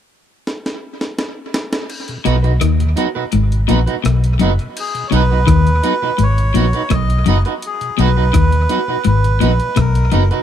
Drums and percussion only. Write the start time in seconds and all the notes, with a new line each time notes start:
0.47 snare
0.66 snare
1.01 snare
1.19 snare
1.54 snare
1.73 snare
1.90 crash
2.08 closed hi-hat
2.25 closed hi-hat
2.44 closed hi-hat
2.61 cross-stick, closed hi-hat
2.80 closed hi-hat
2.97 closed hi-hat
3.32 closed hi-hat
3.52 closed hi-hat
3.69 closed hi-hat
3.87 closed hi-hat
4.05 cross-stick, closed hi-hat
4.24 closed hi-hat
4.39 closed hi-hat
4.59 closed hi-hat
4.77 closed hi-hat, crash
4.95 closed hi-hat
5.12 closed hi-hat
5.48 kick, cross-stick, closed hi-hat
5.67 closed hi-hat
5.84 closed hi-hat
6.19 closed hi-hat
6.38 closed hi-hat
6.55 closed hi-hat
6.73 closed hi-hat
6.90 kick, cross-stick, closed hi-hat
7.10 closed hi-hat
7.26 closed hi-hat
7.45 closed hi-hat
7.62 closed hi-hat
7.81 closed hi-hat
7.99 closed hi-hat
8.34 kick, cross-stick, closed hi-hat
8.52 closed hi-hat
8.69 closed hi-hat
9.04 closed hi-hat
9.24 closed hi-hat
9.41 closed hi-hat
9.60 closed hi-hat
9.76 kick, cross-stick, closed hi-hat
9.95 closed hi-hat
10.12 closed hi-hat
10.31 closed hi-hat